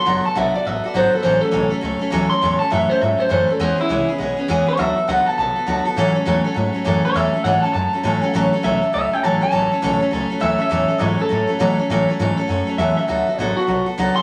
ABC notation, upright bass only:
X:1
M:4/4
L:1/8
Q:"Swing" 1/4=202
K:A
V:1 name="Upright bass" clef=bass
F,,, z B,,, z A,,, z G,,, z | A,,, z B,,, z C,, z D,, z | E,, z F,, z G,, z F,, z | E,, z =C,, z B,,, z E,, z |
D,, z C,, z B,,, z D,, z | A,, z E,, z G,, z F,, z | E,, z G,, z F,, z A,, z | A,,, z B,,, z C,, z G,,, z |
A,,, z B,,, z C,, z D,, z | E,, z G,, z A,, z B,, z | A,, z G,, z F,, z E,, z | D,, z A,,, z B,,, z C,, z |]